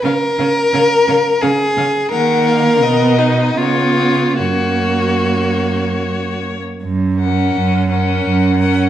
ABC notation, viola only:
X:1
M:3/4
L:1/8
Q:1/4=84
K:F#
V:1 name="Viola"
C C C C C C | A,2 B,2 B,2 | A,4- A, z | z C2 C2 C |]